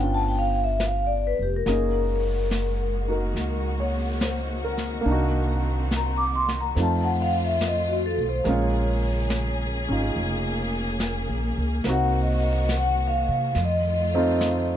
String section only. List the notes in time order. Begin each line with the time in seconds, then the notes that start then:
1.66 D#3 G#3 A#3 F#4
5.05 C4
6.75 A3 F4
8.46 C#3 A#3 G#4
11.84 D#3 F#4
13.55 A3 F4